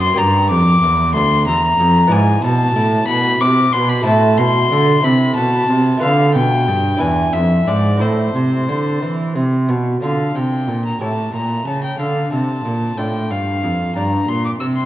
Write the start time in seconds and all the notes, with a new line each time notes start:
Already playing: F#2 C4 F#4 D5
0.02 C6
0.14 A#3 G4 D5 A#5
0.18 G2
0.50 F2 D6
0.83 E2
1.15 D2 C6
1.47 E2 A#5
1.79 F2
2.07 G#2 B3 E4 D5
2.12 G#2 G#5
2.44 B2 A5
2.76 A2
3.08 B2 B5
3.41 C3 D6
3.73 B2 C6
3.89 B5
4.02 A3 E4 C5 A5
4.06 A2
4.38 B2 C6
4.72 D3
5.00 A3 E4 C5 B5
5.05 C3
5.36 B2 A5
5.70 C3
5.97 A3 F4 B4
6.02 D3 F5
6.34 B2 G5
6.68 G2
6.97 D4 E4 B4 G#5
7.01 E2
7.33 F2 E5
7.68 G#2 D5
7.97 C4 E4 A4 C5
8.01 A2
8.35 C3
8.68 D3
9.02 E3
9.36 C3
9.69 B2
10.02 D3 D4 F4 A4 F5
10.35 C3 G5
10.68 A#2
10.85 A#5
11.00 A2 E4 G4 C#5 A5
11.33 A#2 A#5
11.67 C#3 A5
11.84 G5
11.99 D3 F5
12.32 C3 A5
12.65 A#2
12.97 A2 D4 F4 D5 G5
13.31 G2 F5
13.63 F2
13.96 G2 D4 G4 D5 A#5
14.28 A#2 C6
14.45 D6
14.60 C3 E6
14.77 C6